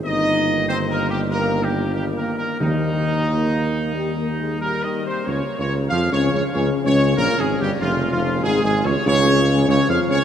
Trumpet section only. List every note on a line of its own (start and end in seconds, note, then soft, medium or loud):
0.05 0.64 D#5 loud
0.69 0.78 C5 medium
0.90 1.09 A#4 medium
1.10 1.20 G4 medium
1.31 1.61 A#4 medium
1.63 1.93 G4 medium
1.95 2.04 G4 medium
2.17 2.36 A#4 medium
2.37 2.59 A#4 medium
2.60 4.57 D#4 medium
4.60 4.81 A#4 medium
4.83 5.06 D#5 medium
5.05 5.26 C5 medium
5.27 5.57 C#5 medium
5.58 5.73 C#5 medium
5.89 6.10 F5 medium
6.12 6.32 C#5 medium
6.33 6.43 C#5 medium
6.54 6.68 C#5 medium
6.86 7.16 C#5 loud
7.17 7.37 A#4 loud
7.39 7.60 G#4 medium
7.60 7.70 G4 medium
7.81 8.10 F4 medium
8.11 8.41 F4 medium
8.43 8.62 G#4 loud
8.64 8.84 G#4 medium
8.85 9.06 C#5 medium
9.07 9.65 C#5 loud
9.69 9.88 C#5 medium
9.90 9.99 F5 medium
10.11 10.24 C#5 medium